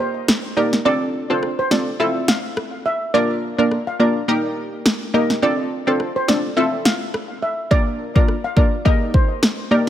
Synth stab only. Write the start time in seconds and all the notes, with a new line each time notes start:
Already playing: A#3 D#4 G4 A#4
0.57 A#3 D#4 G4 A#4
0.85 C4 D4 F4 A4
1.30 C4 D4 F4 A4
1.71 C4 D4 F4 A4
2.00 C4 E4 F4 A4
3.14 A#3 D4 F4 A#4
3.58 A#3 D4 F4 A#4
4.00 A#3 D4 F4 A#4
4.28 A#3 D#4 G4 A#4
5.14 A#3 D#4 G4 A#4
5.42 C4 D4 F4 A4
5.87 C4 D4 F4 A4
6.28 C4 D4 F4 A4
6.57 C4 E4 F4 A4
7.71 A#3 D4 F4 A#4
8.15 A#3 D4 F4 A#4
8.56 A#3 D4 F4 A#4
8.85 A#3 D#4 G4 A#4
9.71 A#3 D#4 G4 A#4